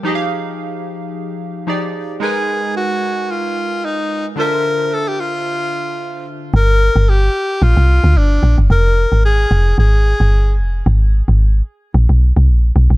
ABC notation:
X:1
M:4/4
L:1/16
Q:"Swing 16ths" 1/4=111
K:Fmix
V:1 name="Alto saxophone"
z16 | _A4 _G4 F4 E3 z | B4 A G F8 z2 | B4 G4 F4 D3 z |
B4 _A4 A6 z2 | z16 |]
V:2 name="Synth keys"
[F,EG_Aef]12 [F,EGAd]4 | [_A,EB_c_a]16 | [D,DFc=e]16 | z16 |
z16 | z16 |]
V:3 name="Log drum bass" clef=bass
z16 | z16 | z16 | G,,,3 G,,,3 z2 B,,, C,,2 D,, G,,,2 B,,, G,,, |
F,,,3 _A,,,3 F,,,2 A,,,3 G,,,3 F,,,2 | _A,,,3 A,,,3 z2 B,,, _C,,2 =C,, B,,,2 _C,, B,,, |]